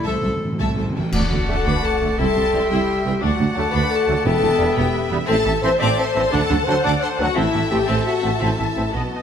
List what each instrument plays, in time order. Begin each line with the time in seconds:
0.03 cello section C2, timpani A2, viola section A3 A4, clarinet A4, violin section C5 E5 A5
0.08 double bass section C2
0.14 timpani A2
0.21 cello section C2, timpani A2, viola section A3 A4, violin section E5 A5
0.26 double bass section C2, timpani A2
0.36 timpani A2
0.45 timpani A2
0.52 timpani A2
0.59 cello section C2, double bass section C2, timpani A2, viola section A3 A4, violin section E5 A5
0.67 timpani A2
0.75 cello section C2, double bass section C2, timpani A2, viola section A3 A4, violin section C5 A5
0.80 timpani A2, violin section E5
0.90 timpani A2, french horn section G4
0.95 cello section C2, double bass section C2, timpani A2, viola section A3 A4, violin section B4 E5 G5 A5
1.11 cello section D2, double bass section D2, tuba D2, clarinet A3, viola section D4 F#4, french horn section F#4, oboe D5, violin section F#5 A5, flute F#5, concert bass drum, crash
1.29 double bass section D2, cello section D2, tuba D2, viola section F#3
1.47 tuba D2, double bass section D2, cello section D2, trombone section D3 A3, viola section A3, french horn section A4, violin section A5
1.65 cello section D2, tuba D2, double bass section D2, viola section D4, french horn section B4, violin section B5
1.82 french horn section A4, violin section A5
2.01 tuba D2, double bass section D2, cello section D2, trombone section D3 A3, viola section A3
2.17 tuba C2, cello section C2, double bass section C2, clarinet G3, viola section E4 G4, french horn section A4, violin section E5 A5 C6, oboe E5, flute G5
2.36 cello section C2, tuba C2, double bass section C2, viola section G3
2.52 cello section C2, tuba C2, double bass section C2, trombone section E3 G3, viola section C4
2.69 tuba C2, cello section C2, double bass section C2, viola section E4, french horn section G4, violin section G5
3.05 cello section C2, double bass section C2, tuba C2, trombone section E3 G3, viola section C4, french horn section G4, violin section G5
3.20 cello section D2, double bass section D2, tuba D2, clarinet A3, viola section D4 F#4, french horn section F#4, violin section F#5 A5
3.24 oboe D5, flute F#5
3.39 cello section D2, tuba D2, double bass section D2, viola section F#3
3.55 cello section D2, tuba D2, double bass section D2, trombone section F#3 A3, viola section A3, french horn section A4, violin section A5
3.70 cello section D2, double bass section D2, viola section D4, french horn section B4, violin section B5
3.74 tuba D2
3.90 french horn section A4, violin section A5
4.06 tuba D2, double bass section D2, cello section D2, trombone section F#3 A3, viola section A3
4.24 tuba E1, double bass section E1, timpani E2, cello section E2, viola section B3 B4, clarinet B3, french horn section A4, violin section E5 G5 A5, oboe E5, flute G5
4.41 tuba E1, double bass section E1, cello section E2, viola section E3
4.58 tuba E1, double bass section E1, cello section E2, trombone section G3 B3, viola section G3
4.76 double bass section E1, tuba E1, cello section E2, viola section B3, french horn section G4, violin section G5
5.11 double bass section E1, tuba E1, cello section E2, viola section G3, trombone section G3 B3
5.25 cello section A2, viola section C4 A4, clarinet C4, french horn section A4, oboe E5, violin section A5, flute A5
5.29 tuba A1, double bass section A1, violin section A5
5.44 double bass section A1, tuba A1, cello section A2, viola section E3, clarinet C4, oboe E5, flute A5
5.61 double bass section A1, tuba A1, cello section A2, trombone section E3 C4, viola section A3, clarinet C4, french horn section C5, oboe E5, flute A5, violin section C6
5.78 double bass section A1, tuba A1, cello section A2, viola section C4, clarinet C4, french horn section D5, oboe E5, flute A5, violin section D6
5.97 clarinet C4, french horn section C5, oboe E5, flute A5, violin section C6
6.14 tuba A1, double bass section A1, cello section A2, trombone section E3 C4, viola section A3, clarinet C4, oboe E5, flute A5
6.30 double bass section D2, tuba D2, cello section D3, viola section D4, clarinet D4, french horn section A4, violin section F#5 A5, oboe F#5, flute A5
6.48 double bass section D2, tuba D2, cello section D3, viola section F#3, clarinet D4, oboe F#5, flute A5
6.65 double bass section D2, tuba D2, cello section D3, trombone section F#3 D4, viola section A3, clarinet D4, french horn section C5, oboe F#5, flute A5, violin section C6
6.83 double bass section D2, tuba D2, cello section D3, viola section D4, clarinet D4, french horn section D5, oboe F#5, flute A5
6.87 violin section D6
7.00 clarinet D4, french horn section C5, oboe F#5, flute A5, violin section C6
7.18 double bass section D2, tuba D2, cello section D3, trombone section F#3, viola section A3, clarinet D4, french horn section F#4, oboe F#5, violin section F#5, flute A5
7.22 trombone section D4
7.34 tuba A1, double bass section A1, cello section A2, viola section C4 A4, clarinet C4, french horn section E4, oboe E5, violin section E5 A5, flute A5
7.39 violin section E5
7.51 double bass section A1, tuba A1, cello section A2, viola section E3, clarinet C4, flute A5
7.55 oboe E5
7.69 double bass section A1, tuba A1, cello section A2, trombone section E3 C4, viola section A3, clarinet C4, french horn section G4, oboe E5, violin section G5, flute A5
7.86 tuba A1, double bass section A1, cello section A2, viola section C4, clarinet C4, french horn section A4, oboe E5, violin section A5, flute A5
8.04 clarinet C4, french horn section F#4, oboe E5, violin section F#5, flute A5
8.22 tuba A1, double bass section A1, cello section A2, trombone section E3 C4, viola section A3, clarinet C4, oboe E5, flute A5
8.39 double bass section A1, tuba A1, timpani A2, cello section A2, viola section C4, clarinet C4, french horn section E4, oboe E5, violin section E5
8.43 flute A5
8.57 double bass section A1, cello section A2, viola section E3, clarinet C4, french horn section E4, oboe E5, violin section E5
8.61 tuba A1, flute A5
8.74 double bass section A1, cello section A2, trombone section E3 C4, viola section A3, clarinet C4, oboe E5
8.78 tuba A1, flute A5
8.91 double bass section B1, cello section B2, viola section B3 F#4, clarinet B3, french horn section B3, violin section B4 D#5
8.95 tuba B1, oboe D#5, flute A5
9.12 clarinet B3, oboe D#5, flute A5